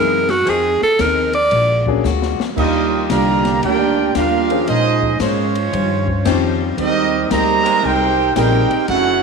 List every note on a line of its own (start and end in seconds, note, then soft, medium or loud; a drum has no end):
0.00 0.45 F#2 medium
0.00 0.31 C3 medium
0.00 0.25 E3 medium
0.00 0.31 G#3 medium
0.00 0.25 A#3 medium
0.00 0.32 A#3 medium
0.00 0.25 C4 medium
0.00 0.25 D#4 medium
0.00 0.31 E4 medium
0.00 0.25 G#4 medium
0.00 0.31 A#4 loud
0.29 0.51 F#4 loud
0.29 snare medium
0.29 ride medium
0.46 0.79 F2 medium
0.46 0.70 F3 medium
0.46 0.83 F3 medium
0.46 0.70 C4 medium
0.46 0.84 C4 medium
0.46 0.70 D#4 medium
0.46 0.84 D#4 medium
0.46 0.70 G#4 loud
0.46 0.84 G#4 medium
0.46 0.82 G#4 loud
0.46 ride medium
0.81 1.03 A4 loud
0.81 muted upright bass stroke soft
0.81 snare soft
0.99 1.50 D#2 loud
0.99 1.36 F3 medium
0.99 1.36 C4 medium
0.99 1.36 D#4 medium
0.99 1.37 G#4 medium
0.99 1.34 A#4 loud
0.99 snare medium
0.99 hi-hat pedal medium
0.99 ride medium
1.33 1.83 D5 loud
1.33 ride medium
1.51 2.03 A#1 loud
1.51 1.89 A#2 medium
1.51 1.89 G#3 soft
1.51 1.90 D4 medium
1.51 1.90 F#4 soft
1.51 ride medium
1.86 2.03 F#3 medium
1.86 2.03 A#3 medium
1.86 2.03 C#4 medium
1.86 2.03 D4 medium
1.86 2.03 G#4 medium
1.86 kick medium
2.04 2.37 D2 loud
2.04 2.42 A#2 medium
2.04 2.42 G#3 medium
2.04 2.42 D4 medium
2.04 2.42 F#4 medium
2.04 snare medium
2.04 hi-hat pedal medium
2.22 snare medium
2.39 muted upright bass stroke soft
2.39 snare medium
2.56 3.08 D#2 loud
2.56 2.94 D#3 medium
2.56 4.05 F3 medium
2.56 3.05 G3 medium
2.56 2.95 G3 medium
2.56 3.05 A#3 medium
2.56 3.06 A#3 medium
2.56 4.05 A#3 medium
2.56 3.05 D#4 medium
2.56 4.05 F4 medium
2.56 3.06 F4 medium
2.56 4.05 G4 medium
2.56 3.07 G4 loud
2.56 3.06 D#5 loud
2.56 kick medium
2.56 crash medium
2.60 2.95 D4 medium
2.60 2.95 F4 medium
3.10 3.61 C2 medium
3.10 3.63 D3 medium
3.10 3.47 D#3 medium
3.10 3.63 G3 medium
3.10 3.47 G3 medium
3.10 3.63 A#3 medium
3.10 3.47 D4 medium
3.10 3.47 F4 medium
3.10 3.63 G4 medium
3.10 3.62 D5 medium
3.10 3.63 F5 medium
3.10 3.63 A#5 loud
3.10 snare medium
3.10 hi-hat pedal medium
3.10 ride medium
3.45 snare medium
3.45 ride medium
3.62 4.13 D2 medium
3.62 3.99 D#3 soft
3.62 3.99 G3 soft
3.62 4.12 A#3 loud
3.62 4.00 D4 soft
3.62 4.12 D4 loud
3.62 4.12 F4 medium
3.62 4.00 F4 soft
3.62 4.12 G4 loud
3.62 4.12 A#4 medium
3.62 4.12 D5 loud
3.62 4.12 G5 loud
3.62 ride medium
4.15 4.66 D#2 medium
4.15 4.52 D#3 medium
4.15 4.52 G3 medium
4.15 4.68 A#3 medium
4.15 4.68 D4 medium
4.15 4.52 D4 medium
4.15 4.68 D4 medium
4.15 4.68 F4 medium
4.15 4.52 F4 medium
4.15 4.68 G4 medium
4.15 4.68 A#4 medium
4.15 4.68 F5 loud
4.15 snare medium
4.15 hi-hat pedal medium
4.15 ride medium
4.50 5.17 F3 medium
4.50 5.17 A#3 medium
4.50 5.17 C#4 medium
4.50 5.17 G#4 medium
4.50 5.17 C5 medium
4.50 ride medium
4.67 5.19 A#2 medium
4.67 5.17 F3 medium
4.67 5.17 G#3 medium
4.67 5.04 A#3 medium
4.67 5.04 C#4 medium
4.67 5.17 C#4 medium
4.67 5.17 D#4 medium
4.67 5.04 G#4 medium
4.67 5.17 G#4 medium
4.67 5.05 C5 medium
4.67 5.17 C5 loud
4.67 5.17 D#5 loud
4.67 ride medium
5.03 kick medium
5.19 5.71 G#2 medium
5.19 6.57 F3 medium
5.19 5.69 G#3 medium
5.19 5.70 G#3 medium
5.19 5.56 A#3 medium
5.19 5.57 C#4 medium
5.19 6.57 C#4 medium
5.19 6.56 F4 medium
5.19 5.57 G#4 medium
5.19 6.56 C5 medium
5.19 5.57 C5 medium
5.19 6.56 C#5 medium
5.19 snare medium
5.19 hi-hat pedal medium
5.19 ride medium
5.55 ride medium
5.72 6.24 G2 loud
5.72 6.09 D#3 soft
5.72 6.09 C#4 medium
5.72 6.09 G4 medium
5.72 6.10 C5 soft
5.72 ride medium
6.08 kick medium
6.25 6.77 F2 loud
6.25 6.62 D#3 medium
6.25 6.79 F3 medium
6.25 6.78 G3 medium
6.25 6.78 C4 medium
6.25 6.62 C#4 medium
6.25 6.79 C#4 medium
6.25 6.79 D#4 medium
6.25 6.78 F4 medium
6.25 6.63 G4 medium
6.25 6.79 G4 medium
6.25 6.78 C5 loud
6.25 6.63 C5 medium
6.25 snare medium
6.25 hi-hat pedal medium
6.25 ride medium
6.77 7.29 D#2 loud
6.77 7.27 G3 medium
6.77 7.15 G#3 medium
6.77 7.27 C4 medium
6.77 7.15 C4 medium
6.77 7.28 C4 loud
6.77 7.27 D#4 medium
6.77 7.15 G4 medium
6.77 7.28 G4 loud
6.77 7.16 A#4 medium
6.77 7.28 A#4 medium
6.77 7.28 D#5 loud
6.77 ride medium
7.30 7.82 D2 medium
7.30 7.83 G3 loud
7.30 7.67 G#3 medium
7.30 7.83 A#3 medium
7.30 7.67 C4 medium
7.30 7.80 D#4 medium
7.30 7.68 G4 medium
7.30 7.84 G4 loud
7.30 7.68 A#4 medium
7.30 7.84 C5 loud
7.30 7.84 D#5 loud
7.30 7.84 A#5 loud
7.30 snare medium
7.30 hi-hat pedal medium
7.30 ride medium
7.63 8.31 G#3 loud
7.63 8.31 C4 medium
7.63 8.32 G4 loud
7.63 8.31 A#4 loud
7.63 ride medium
7.82 8.34 C2 medium
7.82 8.20 G#3 soft
7.82 8.34 C4 loud
7.82 8.21 C4 medium
7.82 8.34 D#4 loud
7.82 8.35 G4 medium
7.82 8.35 A#4 loud
7.82 8.35 C5 medium
7.82 8.35 G5 loud
7.86 8.35 D#4 loud
7.86 8.21 G4 medium
7.86 8.22 A#4 soft
8.35 8.68 A#1 loud
8.35 8.68 G3 medium
8.35 8.73 G#3 medium
8.35 8.68 A#3 medium
8.35 8.84 C4 medium
8.35 8.68 C4 medium
8.35 8.73 C4 medium
8.35 8.84 D#4 medium
8.35 8.85 D#4 medium
8.35 8.68 D#4 medium
8.35 8.85 G4 medium
8.35 8.73 G4 medium
8.35 8.68 G#4 medium
8.35 8.85 A#4 medium
8.35 8.73 A#4 medium
8.35 8.85 C5 medium
8.35 8.85 G5 loud
8.35 snare medium
8.35 hi-hat pedal medium
8.35 ride medium
8.71 ride soft
8.88 9.23 F#1 medium
8.88 9.23 F#3 medium
8.88 9.23 A3 medium
8.88 9.23 C#4 loud
8.88 9.23 E4 loud
8.88 9.23 E4 soft
8.88 9.23 F#4 medium
8.88 9.23 G#4 medium
8.88 9.23 A4 medium
8.88 9.23 C#5 loud
8.88 9.23 F#5 loud
8.88 ride medium